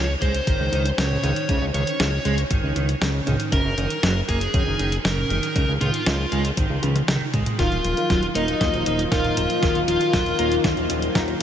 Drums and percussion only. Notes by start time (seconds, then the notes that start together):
0.22 kick, closed hi-hat
0.34 closed hi-hat
0.47 kick, closed hi-hat
0.73 closed hi-hat
0.86 closed hi-hat
0.98 snare, closed hi-hat
1.11 mid tom
1.24 closed hi-hat
1.36 closed hi-hat
1.49 kick, closed hi-hat
1.74 closed hi-hat
1.87 closed hi-hat
2.00 snare, closed hi-hat
2.25 closed hi-hat
2.38 closed hi-hat
2.51 kick, closed hi-hat
2.76 closed hi-hat
2.89 closed hi-hat
3.02 snare, closed hi-hat
3.27 closed hi-hat, mid tom
3.40 closed hi-hat
3.52 kick, closed hi-hat
3.78 closed hi-hat
3.90 closed hi-hat
4.03 snare, closed hi-hat
4.29 kick, closed hi-hat
4.41 closed hi-hat
4.54 kick, closed hi-hat
4.79 closed hi-hat
4.92 closed hi-hat
5.05 snare, closed hi-hat
5.18 mid tom
5.30 closed hi-hat
5.43 closed hi-hat
5.56 kick, closed hi-hat
5.81 closed hi-hat, mid tom
5.94 closed hi-hat
6.06 snare, closed hi-hat
6.32 closed hi-hat
6.45 closed hi-hat
6.57 kick, closed hi-hat
6.83 closed hi-hat, high tom
6.96 closed hi-hat, high tom
7.08 snare, closed hi-hat, mid tom
7.21 mid tom
7.34 kick, closed hi-hat, mid tom
7.46 closed hi-hat, mid tom
7.59 kick, snare, closed hi-hat
7.72 closed hi-hat
7.85 closed hi-hat
7.97 closed hi-hat
8.10 kick, snare, closed hi-hat
8.23 closed hi-hat
8.35 closed hi-hat
8.48 closed hi-hat
8.61 kick, snare, closed hi-hat
8.74 closed hi-hat
8.86 closed hi-hat
8.99 closed hi-hat
9.12 kick, snare, closed hi-hat
9.24 closed hi-hat, mid tom
9.37 closed hi-hat
9.50 closed hi-hat
9.62 kick, snare, closed hi-hat
9.75 closed hi-hat
9.88 closed hi-hat
10.01 closed hi-hat
10.13 kick, snare, closed hi-hat
10.26 closed hi-hat
10.39 closed hi-hat
10.52 closed hi-hat
10.64 kick, snare, closed hi-hat
10.77 closed hi-hat
10.90 closed hi-hat
11.02 closed hi-hat
11.15 kick, snare, closed hi-hat
11.28 closed hi-hat